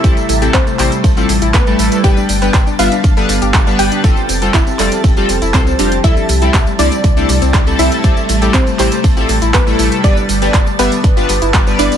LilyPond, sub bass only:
\new Staff \with { instrumentName = "Sub bass" } { \clef bass \time 4/4 \key a \minor \tempo 4 = 120 a,,16 r16 a,,8 a,,16 r16 a,,16 r16 a,,8 a,,16 a,,16 a,,8 a,,16 r16 | g,,16 r16 g,,8 g,,16 r16 g,,16 r16 g,,8 g,,16 g,,16 g,,8 g,,16 r16 | f,,16 r16 f,,8 f,,16 r16 f,,16 r16 f,,8 f,,16 f,,16 c,8 f,,8 | c,16 r16 c,8 c,16 r16 c,16 r16 c,8 c,16 c,16 c,8 c,16 r16 |
a,,16 r16 a,,8 a,,16 r16 a,,16 r16 a,,8 a,,16 a,,16 a,,8 a,,16 r16 | g,,16 r16 g,,8 g,,16 r16 g,,16 r16 g,,8 g,,16 g,,16 g,,8 g,,16 r16 | }